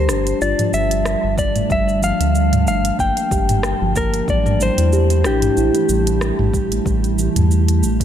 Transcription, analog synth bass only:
0.00 0.10 D2 loud
0.09 0.34 G1 medium
0.41 0.54 G1 medium
0.73 1.16 G1 loud
1.24 1.64 G1 loud
1.70 2.13 G1 loud
2.20 2.68 D2 loud
2.67 2.92 G1 medium
2.99 3.12 G1 medium
3.31 3.74 G1 loud
3.81 4.22 G1 loud
4.28 4.71 A1 medium
4.78 5.27 E2 medium
5.25 5.50 A1 medium
5.57 5.70 A1 medium
5.89 6.32 A1 loud
6.39 6.80 A1 loud
6.86 7.29 A1 loud
7.36 7.84 E2 loud
7.83 8.05 A1 medium

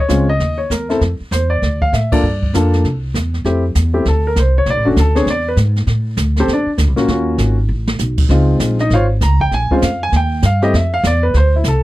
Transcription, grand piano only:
0.00 0.28 C#5 medium
0.09 0.27 G#3 medium
0.09 0.27 C4 soft
0.09 0.27 C#4 medium
0.09 0.27 F4 medium
0.29 0.58 D#5 medium
0.58 0.70 C#5 medium
0.71 0.99 A#4 medium
0.89 1.00 A3 medium
0.89 1.00 C4 medium
0.89 1.00 E4 medium
0.89 1.00 A4 medium
1.32 1.50 C5 medium
1.50 1.79 D5 medium
1.82 1.93 F5 loud
1.94 2.12 E5 medium
2.12 2.22 A#3 medium
2.12 2.22 D4 medium
2.12 2.22 F4 medium
2.12 2.22 A4 medium
2.12 2.51 D5 medium
2.54 2.84 A#3 medium
2.54 2.85 D4 medium
2.54 2.84 F4 medium
2.54 2.85 A4 medium
3.45 3.62 A3 medium
3.45 3.62 C4 medium
3.45 3.62 E4 medium
3.45 3.62 G4 medium
3.94 4.04 A3 medium
3.94 4.04 C4 medium
3.94 4.04 E4 medium
3.94 4.04 G4 medium
4.08 4.25 A4 medium
4.27 4.37 A#4 medium
4.39 4.56 C5 medium
4.58 4.67 C#5 medium
4.70 4.87 D5 loud
4.85 4.95 A3 medium
4.85 4.95 C#4 medium
4.85 4.95 D4 medium
4.85 4.95 F#4 medium
5.00 5.17 A4 medium
5.15 5.26 B3 medium
5.15 5.25 C4 medium
5.15 5.26 D4 medium
5.15 5.26 G#4 medium
5.15 5.27 C#5 medium
5.30 5.47 D5 medium
5.48 5.54 B4 medium
6.40 6.49 C4 medium
6.40 6.49 G4 medium
6.40 6.49 A4 medium
6.40 6.49 C5 medium
6.53 6.69 D4 medium
6.53 6.69 D5 medium
6.96 7.07 A#3 medium
6.96 7.07 C#4 medium
6.96 7.07 F4 medium
6.96 7.07 F#4 medium
7.08 7.54 A#3 medium
7.08 7.54 C#4 medium
7.08 7.54 F4 soft
7.08 7.55 F#4 medium
8.30 8.76 G#3 medium
8.30 8.76 C4 medium
8.30 8.76 D#4 medium
8.30 8.76 F4 medium
8.81 8.91 D#4 medium
8.81 8.91 D#5 medium
8.93 9.05 F4 medium
8.93 9.04 C5 medium
8.93 9.05 C#5 medium
8.93 9.04 F5 medium
9.23 9.40 A#5 medium
9.41 9.52 G5 loud
9.54 9.71 G#5 loud
9.71 9.81 G#3 medium
9.71 9.81 C4 medium
9.71 9.81 C#4 medium
9.71 9.81 F4 medium
9.71 9.83 C5 medium
9.84 10.01 F5 medium
10.03 10.13 G#5 loud
10.16 10.43 G5 medium
10.46 10.63 F5 medium
10.62 10.72 A3 medium
10.62 10.72 C4 medium
10.62 10.72 E4 medium
10.62 10.72 G4 medium
10.62 10.74 D#5 medium
10.76 10.93 E5 medium
10.94 11.04 F5 loud
11.07 11.24 D5 medium
11.23 11.34 B4 medium
11.37 11.54 C5 medium
11.56 11.65 E4 medium
11.68 11.82 A4 medium

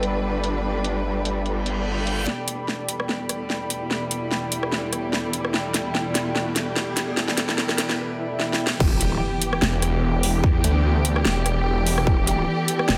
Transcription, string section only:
0.00 2.24 G3 medium
0.00 2.24 D4 medium
0.00 2.24 B4 medium
2.27 8.76 E2 medium
2.27 8.76 B2 medium
2.27 8.76 G3 medium
8.80 12.98 E3 medium
8.80 12.98 B3 medium
8.80 12.98 G4 medium

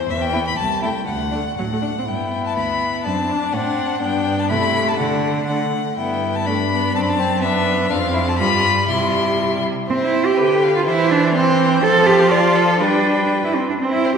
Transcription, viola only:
0.35 0.43 B3 soft
0.84 0.92 A3 soft
1.35 1.43 A3 soft
1.59 1.64 F#3 soft
1.73 1.81 A3 soft
1.99 2.03 C4 soft
2.10 3.08 B3 soft
3.06 3.33 C4 soft
3.31 3.54 D4 soft
3.55 4.01 D4 soft
4.03 4.52 B3 soft
4.51 4.99 A3 soft
5.00 5.48 A3 soft
5.49 5.78 A3 soft
5.99 6.44 B3 soft
6.48 6.56 A3 soft
6.73 6.97 B3 soft
6.96 7.46 C4 soft
7.44 7.92 D4 soft
7.92 8.41 C4 medium
8.40 8.89 G3 medium
8.89 9.67 G3 soft
9.90 10.40 C4 medium
10.39 10.89 D3 medium
10.87 11.83 E3 medium
11.84 12.82 F3 medium
12.81 13.59 G3 medium
13.81 14.18 C4 medium

